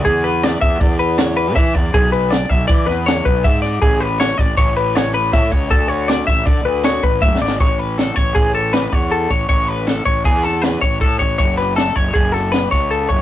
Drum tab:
HH |x--x--x--x--x--x--x--x--x--x--|x--x--x--x--x--x--x--x--x--x--|x--x--x--x--x--x--x--x--x--x--|x--x--x--x--x--x--x--x--------|
SD |------o-----------o-----------|------o--------o--o--------o--|------o--o--------o-----o-----|------o--o--------o-------o-o-|
T1 |------------------------------|------------------------------|------------------------------|------------------------o-----|
BD |o--------o--o-----------o--o--|o--------o--o--------o--o-----|o--------o--o-----------o--o--|o--------o--o--------o--o-----|

HH |x--x--x--x--x--x--x--x--x--x--|x--x--x--x--x--x--x--x--x--x--|x--x--x--x--x--x--x--x--x--x--|
SD |------o-----------o-----------|------o--------o--o-----------|---o--o--------o--o--o--------|
T1 |------------------------------|------------------------------|------------------------------|
BD |o--------o--o--------o-----o--|o--------o--o--------o--o--o--|o--------o--o--------o-----o--|